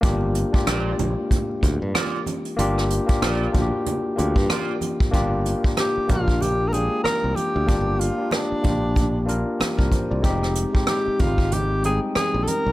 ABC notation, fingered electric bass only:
X:1
M:4/4
L:1/16
Q:"Swing 16ths" 1/4=94
K:Gphr
V:1 name="Fingered electric bass" clef=bass
G,,,3 z B,,,2 B,,, z3 D,, G,, z4 | G,,,3 z B,,,2 B,,, z3 D,, G,, z4 | G,,,3 z3 B,,,4- B,,, z2 C,, z D,, | G,,,3 z3 B,,,4- B,,, z2 C,, z C,, |
F,,,3 z3 A,,,4- A,,, z2 B,,, z C,, |]